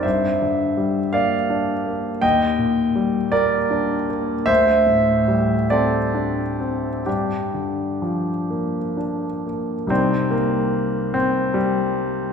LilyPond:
<<
  \new Staff \with { instrumentName = "Grand piano" } { \time 6/8 \key g \minor \tempo 4. = 49 <c'' e''>4. <d'' f''>4. | <ees'' g''>4. <bes' d''>4 r8 | <c'' e''>4. <a' d''>4. | <d' g'>2~ <d' g'>8 r8 |
c'8 bes4 c'8 g4 | }
  \new Staff \with { instrumentName = "Grand piano" } { \time 6/8 \key g \minor g,8 d8 g8 bes8 d'8 bes8 | ees,8 bes,8 g8 bes8 d'8 bes8 | d,8 a,8 g8 c'8 d'8 c'8 | g,8 d8 f8 bes8 d'8 bes8 |
<c, ees' g' c'' d''>2. | }
>>